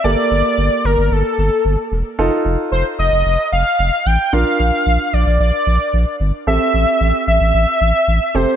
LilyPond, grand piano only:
\new Staff \with { instrumentName = "Grand piano" } { \time 4/4 \key g \minor \tempo 4 = 112 <bes g' a'>1 | <ees' f' a'>1 | <d' f' bes'>1 | <c' g' a'>2.~ <c' g' a'>8 <c' g' a'>8 | }